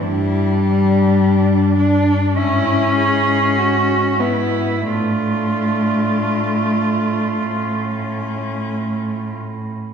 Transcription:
X:1
M:4/4
L:1/8
Q:1/4=47
K:Aphr
V:1 name="Cello"
D4 E ^G ^F E | F6- F z |]
V:2 name="Cello"
E D3 E2 ^F E | D4 ^C4 |]
V:3 name="Cello"
G,3 D ^C3 =B, | A,6- A, z |]
V:4 name="Cello" clef=bass
G,,4 ^G,,4 | A,,4 A,,4 |]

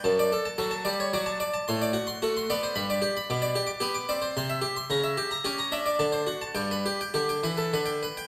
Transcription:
X:1
M:3/4
L:1/16
Q:1/4=110
K:D
V:1 name="Harpsichord"
a d A a A a d c d a d a | [K:G] c' d F c' F c' d c b d G b | d' d G d' G d' d c c' e G c' | ^a e G a G a e d =a c F a |
g B G g G g B A B g B g |]
V:2 name="Harpsichord" clef=bass
F,,2 z2 F,2 G,2 F,2 z2 | [K:G] A,,2 z2 A,2 B,2 G,,2 z2 | B,,2 z2 B,2 C2 C,2 z2 | ^C,2 z2 ^C2 D2 D,2 z2 |
G,,2 z2 D,2 E,2 D,2 z2 |]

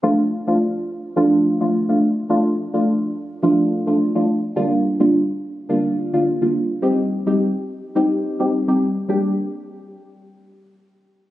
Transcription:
X:1
M:4/4
L:1/16
Q:"Swing 16ths" 1/4=106
K:Gm
V:1 name="Synth stab"
[F,A,DF] z2 [F,A,DF] z4 [F,A,DF]3 [F,A,DF] z [F,A,DF] z2 | [F,A,DF] z2 [F,A,DF] z4 [F,A,DF]3 [F,A,DF] z [F,A,DF] z2 | [D,G,B,DF] z2 [D,G,B,DF] z4 [D,G,B,DF]3 [D,G,B,DF] z [D,G,B,DF] z2 | [G,CEG] z2 [G,CEG] z4 [G,CEG]3 [G,CEG] z [G,CEG] z2 |
[G,B,DG]2 z12 z2 |]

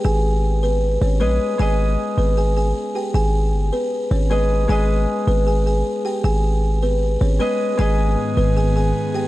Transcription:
X:1
M:4/4
L:1/8
Q:1/4=155
K:G#m
V:1 name="Harp"
[G,GBd]6 [G,GBd]2 | [G,GBd]8- | [G,GBd]6 [G,GBd]2 | [G,GBd]8- |
[G,GBd]6 [G,GBd]2 | [G,GBd]8 |]
V:2 name="Kalimba"
[Gg]3 [B,B]2 [Cc] [B,B]2 | [Gg]3 [B,B] [Gg] [Gg]2 [=G=g] | [Gg]3 [B,B]2 [Cc] [B,B]2 | [Gg]3 [B,B] [Gg] [Gg]2 [=G=g] |
[Gg]3 [B,B]2 [Cc] [B,B]2 | [Gg]3 [B,B] [Gg] [Gg]2 [=G=g] |]
V:3 name="Analog synth pad" clef=bass
z8 | z8 | z8 | z8 |
z8 | [G,,D,B,G]8 |]
V:4 name="808-style bass" clef=bass
G,,,4- G,,, G,,, A,,, z | G,,,2 z G,,,3 z2 | G,,,2 =G,,, z2 ^G,,,3 | G,,,2 z G,,,3 z2 |
G,,,4- G,,, G,,, z2 | G,,,2 z G,,,3 z2 |]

